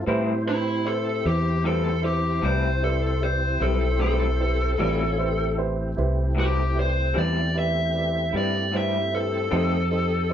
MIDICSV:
0, 0, Header, 1, 6, 480
1, 0, Start_track
1, 0, Key_signature, 0, "minor"
1, 0, Tempo, 786370
1, 47, Time_signature, 12, 3, 24, 8
1, 6308, End_track
2, 0, Start_track
2, 0, Title_t, "Lead electric guitar"
2, 0, Program_c, 0, 29
2, 298, Note_on_c, 0, 64, 86
2, 525, Note_off_c, 0, 64, 0
2, 529, Note_on_c, 0, 69, 70
2, 760, Note_off_c, 0, 69, 0
2, 775, Note_on_c, 0, 67, 68
2, 1003, Note_off_c, 0, 67, 0
2, 1013, Note_on_c, 0, 69, 77
2, 1243, Note_off_c, 0, 69, 0
2, 1252, Note_on_c, 0, 67, 69
2, 1482, Note_off_c, 0, 67, 0
2, 1493, Note_on_c, 0, 72, 77
2, 1723, Note_off_c, 0, 72, 0
2, 1733, Note_on_c, 0, 69, 73
2, 1962, Note_off_c, 0, 69, 0
2, 1972, Note_on_c, 0, 72, 73
2, 2202, Note_off_c, 0, 72, 0
2, 2209, Note_on_c, 0, 69, 63
2, 2441, Note_off_c, 0, 69, 0
2, 2449, Note_on_c, 0, 69, 65
2, 3384, Note_off_c, 0, 69, 0
2, 3904, Note_on_c, 0, 67, 67
2, 4129, Note_off_c, 0, 67, 0
2, 4146, Note_on_c, 0, 72, 68
2, 4370, Note_off_c, 0, 72, 0
2, 4382, Note_on_c, 0, 74, 75
2, 4608, Note_off_c, 0, 74, 0
2, 4631, Note_on_c, 0, 76, 61
2, 5085, Note_off_c, 0, 76, 0
2, 5110, Note_on_c, 0, 74, 61
2, 5332, Note_off_c, 0, 74, 0
2, 5352, Note_on_c, 0, 76, 64
2, 5573, Note_off_c, 0, 76, 0
2, 5584, Note_on_c, 0, 69, 76
2, 6308, Note_off_c, 0, 69, 0
2, 6308, End_track
3, 0, Start_track
3, 0, Title_t, "Upright piano"
3, 0, Program_c, 1, 0
3, 38, Note_on_c, 1, 64, 64
3, 42, Note_on_c, 1, 67, 67
3, 46, Note_on_c, 1, 71, 66
3, 50, Note_on_c, 1, 72, 79
3, 222, Note_off_c, 1, 64, 0
3, 224, Note_off_c, 1, 67, 0
3, 227, Note_off_c, 1, 71, 0
3, 228, Note_off_c, 1, 72, 0
3, 277, Note_on_c, 1, 64, 53
3, 281, Note_on_c, 1, 67, 45
3, 282, Note_on_c, 1, 71, 47
3, 288, Note_on_c, 1, 72, 57
3, 462, Note_off_c, 1, 64, 0
3, 464, Note_off_c, 1, 67, 0
3, 465, Note_off_c, 1, 71, 0
3, 467, Note_off_c, 1, 72, 0
3, 514, Note_on_c, 1, 64, 51
3, 518, Note_on_c, 1, 67, 46
3, 521, Note_on_c, 1, 71, 46
3, 523, Note_on_c, 1, 72, 62
3, 700, Note_off_c, 1, 64, 0
3, 703, Note_off_c, 1, 67, 0
3, 704, Note_off_c, 1, 71, 0
3, 705, Note_off_c, 1, 72, 0
3, 759, Note_on_c, 1, 64, 51
3, 765, Note_on_c, 1, 67, 49
3, 767, Note_on_c, 1, 71, 42
3, 773, Note_on_c, 1, 72, 50
3, 943, Note_off_c, 1, 64, 0
3, 946, Note_off_c, 1, 67, 0
3, 947, Note_off_c, 1, 71, 0
3, 950, Note_off_c, 1, 72, 0
3, 1000, Note_on_c, 1, 64, 50
3, 1003, Note_on_c, 1, 67, 48
3, 1010, Note_on_c, 1, 71, 44
3, 1013, Note_on_c, 1, 72, 51
3, 1183, Note_off_c, 1, 64, 0
3, 1185, Note_off_c, 1, 67, 0
3, 1188, Note_off_c, 1, 71, 0
3, 1190, Note_off_c, 1, 72, 0
3, 1232, Note_on_c, 1, 64, 51
3, 1235, Note_on_c, 1, 67, 47
3, 1241, Note_on_c, 1, 71, 43
3, 1246, Note_on_c, 1, 72, 58
3, 1419, Note_off_c, 1, 64, 0
3, 1421, Note_off_c, 1, 67, 0
3, 1424, Note_off_c, 1, 71, 0
3, 1426, Note_off_c, 1, 72, 0
3, 1480, Note_on_c, 1, 64, 47
3, 1484, Note_on_c, 1, 67, 45
3, 1489, Note_on_c, 1, 71, 46
3, 1493, Note_on_c, 1, 74, 46
3, 1663, Note_off_c, 1, 64, 0
3, 1665, Note_off_c, 1, 67, 0
3, 1668, Note_off_c, 1, 71, 0
3, 1670, Note_off_c, 1, 74, 0
3, 1723, Note_on_c, 1, 64, 53
3, 1727, Note_on_c, 1, 67, 49
3, 1730, Note_on_c, 1, 71, 53
3, 1736, Note_on_c, 1, 74, 58
3, 1905, Note_off_c, 1, 64, 0
3, 1907, Note_off_c, 1, 67, 0
3, 1908, Note_off_c, 1, 71, 0
3, 1911, Note_off_c, 1, 74, 0
3, 1958, Note_on_c, 1, 64, 47
3, 1964, Note_on_c, 1, 67, 43
3, 1967, Note_on_c, 1, 71, 41
3, 1970, Note_on_c, 1, 74, 53
3, 2142, Note_off_c, 1, 64, 0
3, 2145, Note_off_c, 1, 67, 0
3, 2147, Note_off_c, 1, 71, 0
3, 2148, Note_off_c, 1, 74, 0
3, 2203, Note_on_c, 1, 64, 42
3, 2203, Note_on_c, 1, 67, 47
3, 2209, Note_on_c, 1, 71, 41
3, 2210, Note_on_c, 1, 72, 55
3, 2385, Note_off_c, 1, 64, 0
3, 2385, Note_off_c, 1, 67, 0
3, 2388, Note_off_c, 1, 71, 0
3, 2388, Note_off_c, 1, 72, 0
3, 2437, Note_on_c, 1, 64, 43
3, 2442, Note_on_c, 1, 67, 41
3, 2446, Note_on_c, 1, 72, 53
3, 2447, Note_on_c, 1, 71, 46
3, 2622, Note_off_c, 1, 64, 0
3, 2624, Note_off_c, 1, 67, 0
3, 2626, Note_off_c, 1, 72, 0
3, 2627, Note_off_c, 1, 71, 0
3, 2679, Note_on_c, 1, 64, 48
3, 2685, Note_on_c, 1, 67, 42
3, 2687, Note_on_c, 1, 71, 49
3, 2691, Note_on_c, 1, 72, 53
3, 2863, Note_off_c, 1, 64, 0
3, 2866, Note_off_c, 1, 67, 0
3, 2867, Note_off_c, 1, 71, 0
3, 2869, Note_off_c, 1, 72, 0
3, 2919, Note_on_c, 1, 64, 57
3, 2922, Note_on_c, 1, 67, 53
3, 2926, Note_on_c, 1, 71, 49
3, 2929, Note_on_c, 1, 74, 60
3, 3103, Note_off_c, 1, 64, 0
3, 3104, Note_off_c, 1, 67, 0
3, 3106, Note_off_c, 1, 71, 0
3, 3108, Note_off_c, 1, 74, 0
3, 3158, Note_on_c, 1, 64, 56
3, 3161, Note_on_c, 1, 67, 53
3, 3164, Note_on_c, 1, 71, 53
3, 3170, Note_on_c, 1, 72, 65
3, 3342, Note_off_c, 1, 64, 0
3, 3344, Note_off_c, 1, 67, 0
3, 3346, Note_off_c, 1, 71, 0
3, 3348, Note_off_c, 1, 72, 0
3, 3399, Note_on_c, 1, 64, 59
3, 3403, Note_on_c, 1, 67, 49
3, 3407, Note_on_c, 1, 71, 50
3, 3410, Note_on_c, 1, 72, 66
3, 3583, Note_off_c, 1, 64, 0
3, 3585, Note_off_c, 1, 67, 0
3, 3587, Note_off_c, 1, 71, 0
3, 3588, Note_off_c, 1, 72, 0
3, 3643, Note_on_c, 1, 64, 60
3, 3644, Note_on_c, 1, 67, 52
3, 3651, Note_on_c, 1, 71, 49
3, 3653, Note_on_c, 1, 72, 60
3, 3825, Note_off_c, 1, 64, 0
3, 3826, Note_off_c, 1, 67, 0
3, 3829, Note_off_c, 1, 71, 0
3, 3830, Note_off_c, 1, 72, 0
3, 3880, Note_on_c, 1, 64, 43
3, 3888, Note_on_c, 1, 67, 42
3, 3890, Note_on_c, 1, 71, 38
3, 3893, Note_on_c, 1, 72, 53
3, 4064, Note_off_c, 1, 64, 0
3, 4068, Note_off_c, 1, 67, 0
3, 4069, Note_off_c, 1, 71, 0
3, 4070, Note_off_c, 1, 72, 0
3, 4118, Note_on_c, 1, 64, 45
3, 4121, Note_on_c, 1, 67, 47
3, 4126, Note_on_c, 1, 71, 46
3, 4131, Note_on_c, 1, 74, 53
3, 4302, Note_off_c, 1, 64, 0
3, 4304, Note_off_c, 1, 67, 0
3, 4307, Note_off_c, 1, 71, 0
3, 4309, Note_off_c, 1, 74, 0
3, 4359, Note_on_c, 1, 64, 46
3, 4363, Note_on_c, 1, 67, 38
3, 4366, Note_on_c, 1, 71, 42
3, 4371, Note_on_c, 1, 74, 52
3, 4543, Note_off_c, 1, 64, 0
3, 4545, Note_off_c, 1, 67, 0
3, 4547, Note_off_c, 1, 71, 0
3, 4549, Note_off_c, 1, 74, 0
3, 4604, Note_on_c, 1, 64, 53
3, 4609, Note_on_c, 1, 67, 48
3, 4611, Note_on_c, 1, 71, 46
3, 4615, Note_on_c, 1, 74, 56
3, 4786, Note_off_c, 1, 64, 0
3, 4788, Note_off_c, 1, 67, 0
3, 4789, Note_off_c, 1, 71, 0
3, 4791, Note_off_c, 1, 74, 0
3, 4845, Note_on_c, 1, 64, 47
3, 4851, Note_on_c, 1, 67, 47
3, 4853, Note_on_c, 1, 71, 47
3, 4857, Note_on_c, 1, 74, 52
3, 5026, Note_off_c, 1, 64, 0
3, 5029, Note_off_c, 1, 67, 0
3, 5030, Note_off_c, 1, 71, 0
3, 5032, Note_off_c, 1, 74, 0
3, 5092, Note_on_c, 1, 64, 44
3, 5097, Note_on_c, 1, 67, 41
3, 5100, Note_on_c, 1, 71, 41
3, 5102, Note_on_c, 1, 74, 52
3, 5270, Note_off_c, 1, 64, 0
3, 5272, Note_off_c, 1, 67, 0
3, 5274, Note_off_c, 1, 71, 0
3, 5275, Note_off_c, 1, 74, 0
3, 5333, Note_on_c, 1, 64, 44
3, 5335, Note_on_c, 1, 67, 42
3, 5337, Note_on_c, 1, 71, 44
3, 5341, Note_on_c, 1, 72, 50
3, 5511, Note_off_c, 1, 64, 0
3, 5512, Note_off_c, 1, 67, 0
3, 5512, Note_off_c, 1, 71, 0
3, 5514, Note_off_c, 1, 72, 0
3, 5569, Note_on_c, 1, 64, 43
3, 5576, Note_on_c, 1, 67, 46
3, 5578, Note_on_c, 1, 71, 42
3, 5581, Note_on_c, 1, 72, 52
3, 5748, Note_off_c, 1, 64, 0
3, 5752, Note_off_c, 1, 67, 0
3, 5753, Note_off_c, 1, 71, 0
3, 5755, Note_off_c, 1, 72, 0
3, 5806, Note_on_c, 1, 63, 54
3, 5811, Note_on_c, 1, 67, 50
3, 5813, Note_on_c, 1, 69, 51
3, 5819, Note_on_c, 1, 72, 66
3, 5987, Note_off_c, 1, 63, 0
3, 5989, Note_off_c, 1, 67, 0
3, 5991, Note_off_c, 1, 69, 0
3, 5994, Note_off_c, 1, 72, 0
3, 6047, Note_on_c, 1, 63, 47
3, 6047, Note_on_c, 1, 67, 44
3, 6052, Note_on_c, 1, 69, 48
3, 6056, Note_on_c, 1, 72, 50
3, 6228, Note_off_c, 1, 63, 0
3, 6228, Note_off_c, 1, 67, 0
3, 6230, Note_off_c, 1, 69, 0
3, 6232, Note_off_c, 1, 72, 0
3, 6282, Note_on_c, 1, 63, 55
3, 6285, Note_on_c, 1, 67, 47
3, 6308, Note_off_c, 1, 63, 0
3, 6308, Note_off_c, 1, 67, 0
3, 6308, End_track
4, 0, Start_track
4, 0, Title_t, "Tonewheel organ"
4, 0, Program_c, 2, 16
4, 44, Note_on_c, 2, 72, 70
4, 46, Note_on_c, 2, 67, 66
4, 47, Note_on_c, 2, 64, 68
4, 48, Note_on_c, 2, 60, 72
4, 2900, Note_off_c, 2, 72, 0
4, 2902, Note_off_c, 2, 64, 0
4, 2902, Note_off_c, 2, 67, 0
4, 2903, Note_off_c, 2, 60, 0
4, 2920, Note_on_c, 2, 65, 61
4, 2923, Note_on_c, 2, 60, 62
4, 2923, Note_on_c, 2, 80, 58
4, 2925, Note_on_c, 2, 61, 62
4, 3164, Note_off_c, 2, 65, 0
4, 3165, Note_off_c, 2, 60, 0
4, 3165, Note_off_c, 2, 80, 0
4, 3166, Note_off_c, 2, 61, 0
4, 3173, Note_on_c, 2, 60, 60
4, 3175, Note_on_c, 2, 57, 66
4, 3175, Note_on_c, 2, 64, 62
4, 3178, Note_on_c, 2, 67, 66
4, 5787, Note_off_c, 2, 60, 0
4, 5788, Note_off_c, 2, 57, 0
4, 5788, Note_off_c, 2, 64, 0
4, 5789, Note_off_c, 2, 67, 0
4, 5804, Note_on_c, 2, 75, 64
4, 5805, Note_on_c, 2, 60, 67
4, 5805, Note_on_c, 2, 67, 58
4, 5805, Note_on_c, 2, 69, 63
4, 6308, Note_off_c, 2, 60, 0
4, 6308, Note_off_c, 2, 67, 0
4, 6308, Note_off_c, 2, 69, 0
4, 6308, Note_off_c, 2, 75, 0
4, 6308, End_track
5, 0, Start_track
5, 0, Title_t, "Clean electric guitar"
5, 0, Program_c, 3, 27
5, 40, Note_on_c, 3, 45, 69
5, 46, Note_on_c, 3, 55, 73
5, 50, Note_on_c, 3, 60, 66
5, 50, Note_on_c, 3, 64, 86
5, 188, Note_off_c, 3, 45, 0
5, 190, Note_off_c, 3, 55, 0
5, 192, Note_off_c, 3, 60, 0
5, 192, Note_off_c, 3, 64, 0
5, 1003, Note_on_c, 3, 45, 53
5, 1006, Note_on_c, 3, 55, 55
5, 1013, Note_on_c, 3, 60, 55
5, 1021, Note_on_c, 3, 64, 59
5, 1149, Note_off_c, 3, 45, 0
5, 1150, Note_off_c, 3, 55, 0
5, 1154, Note_off_c, 3, 60, 0
5, 1158, Note_off_c, 3, 64, 0
5, 1477, Note_on_c, 3, 45, 63
5, 1484, Note_on_c, 3, 55, 68
5, 1486, Note_on_c, 3, 60, 59
5, 1488, Note_on_c, 3, 64, 73
5, 1626, Note_off_c, 3, 45, 0
5, 1629, Note_off_c, 3, 55, 0
5, 1630, Note_off_c, 3, 60, 0
5, 1631, Note_off_c, 3, 64, 0
5, 2199, Note_on_c, 3, 64, 50
5, 2208, Note_on_c, 3, 60, 41
5, 2214, Note_on_c, 3, 55, 42
5, 2347, Note_off_c, 3, 64, 0
5, 2351, Note_off_c, 3, 60, 0
5, 2354, Note_off_c, 3, 55, 0
5, 2440, Note_on_c, 3, 45, 45
5, 2448, Note_on_c, 3, 55, 49
5, 2451, Note_on_c, 3, 60, 55
5, 2456, Note_on_c, 3, 64, 54
5, 2587, Note_off_c, 3, 45, 0
5, 2592, Note_off_c, 3, 55, 0
5, 2593, Note_off_c, 3, 60, 0
5, 2595, Note_off_c, 3, 64, 0
5, 2918, Note_on_c, 3, 45, 60
5, 2923, Note_on_c, 3, 55, 59
5, 2928, Note_on_c, 3, 60, 68
5, 2929, Note_on_c, 3, 64, 67
5, 3066, Note_off_c, 3, 45, 0
5, 3069, Note_off_c, 3, 55, 0
5, 3072, Note_off_c, 3, 60, 0
5, 3072, Note_off_c, 3, 64, 0
5, 3875, Note_on_c, 3, 45, 48
5, 3883, Note_on_c, 3, 55, 54
5, 3887, Note_on_c, 3, 60, 60
5, 3891, Note_on_c, 3, 64, 56
5, 4025, Note_off_c, 3, 45, 0
5, 4029, Note_off_c, 3, 55, 0
5, 4031, Note_off_c, 3, 60, 0
5, 4033, Note_off_c, 3, 64, 0
5, 4359, Note_on_c, 3, 45, 58
5, 4360, Note_on_c, 3, 55, 67
5, 4366, Note_on_c, 3, 60, 65
5, 4368, Note_on_c, 3, 64, 68
5, 4507, Note_off_c, 3, 45, 0
5, 4507, Note_off_c, 3, 55, 0
5, 4510, Note_off_c, 3, 60, 0
5, 4512, Note_off_c, 3, 64, 0
5, 5082, Note_on_c, 3, 64, 49
5, 5090, Note_on_c, 3, 60, 49
5, 5096, Note_on_c, 3, 55, 39
5, 5229, Note_off_c, 3, 64, 0
5, 5233, Note_off_c, 3, 60, 0
5, 5236, Note_off_c, 3, 55, 0
5, 5320, Note_on_c, 3, 45, 45
5, 5330, Note_on_c, 3, 55, 52
5, 5331, Note_on_c, 3, 60, 47
5, 5339, Note_on_c, 3, 64, 49
5, 5468, Note_off_c, 3, 45, 0
5, 5473, Note_off_c, 3, 55, 0
5, 5473, Note_off_c, 3, 60, 0
5, 5478, Note_off_c, 3, 64, 0
5, 5803, Note_on_c, 3, 41, 59
5, 5805, Note_on_c, 3, 51, 57
5, 5808, Note_on_c, 3, 57, 66
5, 5809, Note_on_c, 3, 60, 70
5, 5949, Note_off_c, 3, 41, 0
5, 5950, Note_off_c, 3, 51, 0
5, 5952, Note_off_c, 3, 57, 0
5, 5953, Note_off_c, 3, 60, 0
5, 6308, End_track
6, 0, Start_track
6, 0, Title_t, "Fingered electric bass"
6, 0, Program_c, 4, 33
6, 45, Note_on_c, 4, 45, 76
6, 744, Note_off_c, 4, 45, 0
6, 766, Note_on_c, 4, 40, 70
6, 1464, Note_off_c, 4, 40, 0
6, 1483, Note_on_c, 4, 36, 70
6, 2183, Note_off_c, 4, 36, 0
6, 2205, Note_on_c, 4, 35, 86
6, 2904, Note_off_c, 4, 35, 0
6, 2929, Note_on_c, 4, 33, 73
6, 3626, Note_off_c, 4, 33, 0
6, 3651, Note_on_c, 4, 36, 75
6, 4347, Note_off_c, 4, 36, 0
6, 4373, Note_on_c, 4, 40, 63
6, 5069, Note_off_c, 4, 40, 0
6, 5089, Note_on_c, 4, 43, 75
6, 5787, Note_off_c, 4, 43, 0
6, 5811, Note_on_c, 4, 41, 72
6, 6308, Note_off_c, 4, 41, 0
6, 6308, End_track
0, 0, End_of_file